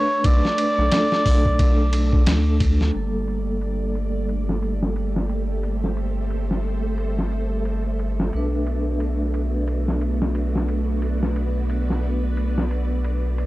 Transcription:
Already playing: A3 D4 A4 B4 C#5
0.24 B1 D5, kick, ride
0.45 snare
0.58 ride
0.76 B1 A3 D4
0.81 A4
0.92 snare, ride
1.12 snare
1.25 B1, kick, open hi-hat
1.45 kick
1.59 kick, ride
1.93 ride
2.13 kick
2.26 D2, snare, ride
2.60 kick, ride
2.81 snare
2.92 G1 G3 A3 A#3 G4 A4 D5, ride
2.97 A4
3.28 ride
3.61 ride
3.95 ride
4.29 ride
4.49 snare
4.62 ride
4.83 snare
4.96 ride
5.16 snare
5.29 ride
5.63 C5, ride
5.84 snare
5.97 ride
6.30 ride
6.51 snare
6.64 open hi-hat
6.98 ride
7.18 snare
7.32 ride
7.65 ride
7.99 ride
8.20 snare
8.31 B1 A3 B3 D4 F#4 D5, ride
8.36 B4
8.67 ride
9.00 ride
9.34 ride
9.68 ride
9.88 snare
10.01 ride
10.22 snare
10.35 ride
10.56 snare
10.68 ride
11.02 B4, ride
11.23 snare
11.36 ride
11.70 ride
11.90 snare
12.03 open hi-hat
12.37 ride
12.58 snare
12.71 ride
13.04 ride
13.38 ride

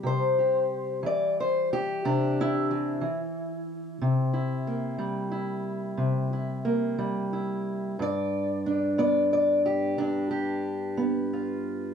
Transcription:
Already playing: C3 G3
0.03 C3 C5
0.39 G4
1.03 E3 D5
1.40 C5
1.73 G4
2.05 C3 D4
2.41 E4
2.71 E3
3.01 E3
4.02 C3
4.33 E4
4.67 A#3
4.99 G3
5.32 E4
5.97 C3
6.33 E4
6.65 A#3
6.98 G3
7.33 E4
7.99 G2 D5
8.66 D4
8.98 B3 D5
9.33 D5
9.66 G4
9.98 G2 D4
10.31 G4
10.97 B3
11.33 F4

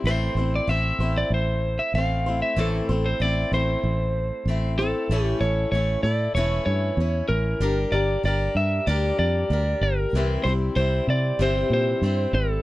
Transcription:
0.04 A1 A2 E3 A3 C4 E4 C5
0.08 C5
0.35 A1 C4 E4 C5
0.40 A3
0.55 D5
0.67 A1 A3 C4 E4 C5 E5
0.99 A1 C4 E4 C5
1.04 A3
1.18 D5
1.30 A1 C5
1.79 E5
1.94 A1 A3 C4 F5
1.98 C5
2.26 A3 C4 E4 C5
2.42 E5
2.56 A1 A2 E3 A3 C4 E4 A4 C5
2.89 A1 A3 C4 E4 C5
3.06 C5
3.20 A1 A3 C4 E4 C5 D5
3.52 A1 C4 E4 C5
3.56 A3
3.83 A1
4.45 A1 A3 C4 E4
4.51 C5
4.79 A3 C4 E4 A4 C5
5.09 A1 A2 E3 A3 C#4 E4 A4
5.24 G4
5.40 A1 C#4 E4 A4 C#5
5.44 A3
5.72 A1 A3 C#4 E4 C#5
5.77 A4
6.03 A2 E4 A4 D5
6.08 A3
6.35 E1 A2 E3 A3 C#4 E4 A4 C#5
6.66 G2 C#5
6.97 E2 C#4
7.01 E4
7.29 A1 A#4
7.60 G1 G3 D4 G4 A#4
7.92 G1 D4 G4 A#4 D5
8.23 G1 G3 D4 G4 A#4 D5
8.55 G2 E5
8.87 D2 G3 D4 G4 A#4 D5
9.19 F2 D5
9.50 D2 G3 D4 G4 A#4
9.81 G1 A#4
10.13 C2 C3 E3 G3
10.17 C4 E4 C5
10.44 C2 C4 E4 C5
10.49 G3
10.75 C2 G3 C4 E4 C5
11.07 C3 D5
11.39 G1 C3 E3 G3 C4 E4 C5
11.70 A#2 C5
12.02 G2 G3 C4 E4
12.06 C5
12.33 G#1 A4

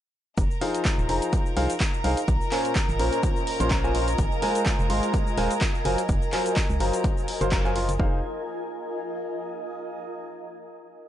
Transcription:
0.37 F1 F4 A#4 A#5, kick, closed hi-hat, shaker
0.51 shaker
0.55 G#5
0.61 F3 D#4 G#4 C5 F5, open hi-hat
0.70 D#5
0.75 A#4, closed hi-hat, shaker
0.85 kick, clap, closed hi-hat, shaker
0.98 D#1, shaker
1.09 F1 F3 D#4 G#4 C5 A#5, open hi-hat
1.22 closed hi-hat, shaker
1.33 kick, closed hi-hat, shaker
1.46 shaker
1.57 C2 F3 D#4 G#4 C5 F5, open hi-hat
1.70 closed hi-hat, shaker
1.80 kick, clap, closed hi-hat, shaker
1.94 shaker
2.04 C2 D#4 G#4 C5 F5, open hi-hat
2.17 closed hi-hat, shaker
2.28 A#1, kick, closed hi-hat, shaker
2.41 shaker
2.52 A#2 C#4 A#4 C5 G#5, clap, open hi-hat
2.65 closed hi-hat, shaker
2.75 kick, clap, closed hi-hat, shaker
2.89 G#1, shaker
2.99 A#1 A#2 C#4 A#4 C5 A#5, open hi-hat
3.13 closed hi-hat, shaker
3.23 kick, closed hi-hat, shaker
3.36 shaker
3.47 open hi-hat
3.60 A#1 A#2 C#4 A#4 C5 C6, closed hi-hat, shaker
3.71 A#2 C#4 A#4 C5 A#5, kick, clap, closed hi-hat, shaker
3.84 A#2 C#4 A#4 C5 G#5, shaker
3.95 C#4 A#4 C5 C6, open hi-hat
4.08 closed hi-hat, shaker
4.18 G#1, kick, closed hi-hat, shaker
4.32 shaker
4.42 G#3 F4 A#4 C5 G#5, open hi-hat
4.55 closed hi-hat, shaker
4.66 kick, clap, closed hi-hat, shaker
4.79 F1, shaker
4.90 G#1 G#3 F4 A#4 C5 C6, open hi-hat
5.03 closed hi-hat, shaker
5.14 kick, closed hi-hat, shaker
5.27 shaker
5.38 D#1 G#3 F4 A#4 C5 G#5, open hi-hat
5.51 closed hi-hat, shaker
5.61 kick, clap, closed hi-hat, shaker
5.75 shaker
5.85 F#1 F#3 F4 A#4 C5 G#5, open hi-hat
5.98 closed hi-hat, shaker
6.09 F#1, kick, closed hi-hat, shaker
6.22 shaker
6.33 F#3 F4 A#4 C5 G#5, clap, open hi-hat
6.46 closed hi-hat, shaker
6.56 kick, clap, closed hi-hat, shaker
6.70 C#2, shaker
6.80 F#1 F#3 F4 A#4 C5 A#5, open hi-hat
6.93 closed hi-hat, shaker
7.04 kick, closed hi-hat, shaker
7.17 shaker
7.28 open hi-hat
7.41 F#1 F#3 F4 A#4 C5 C6, closed hi-hat, shaker
7.52 F#3 F4 A#4 C5 A#5, kick, clap, closed hi-hat, shaker
7.65 F#3 F4 A#4 C5 G#5, shaker
7.76 F3 F4 A#4 C5 C6, open hi-hat
7.89 F#1, closed hi-hat, shaker
7.99 F1 D#4 F4 G#4 C5 F5, kick
8.07 A#4
8.15 D#5
8.21 G#5

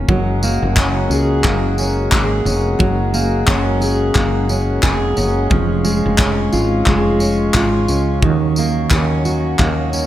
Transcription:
Already playing: A#3 C#4 F#4
0.08 F#1 F#3 G#3 F#4 A#4, kick
0.43 A#3, tambourine
0.62 F#1
0.77 C#4, kick, clap
1.10 C#2 G#4, tambourine
1.44 F#1 A#3, kick, clap
1.78 C#4, tambourine
2.12 G#1 G#4, kick, clap
2.45 F1 C#4, tambourine
2.79 F#1 F#3, kick
3.14 A#3, tambourine
3.47 F#1 C#4, kick, clap
3.81 G#4, tambourine
4.15 F#1 A#3, kick, clap
4.49 C#4, tambourine
4.83 F1 G#4, kick, clap
5.16 F#1 C#4, tambourine
5.50 F1 F3 F4 C#5, kick
5.84 G#3, tambourine
6.06 F1
6.18 C#4, kick, clap
6.52 G#1 F4, tambourine
6.86 F1 G#3, kick, clap
7.20 C#4, tambourine
7.54 G#1 F4, kick, clap
7.88 C#2 C#4, tambourine
8.22 D#2 D#3 F#3 D#4, kick
8.56 A#3, tambourine
8.91 D#2 C#4, kick, clap
9.25 F#4, tambourine
9.59 D#2 A#3, kick, clap
9.93 C#4, tambourine

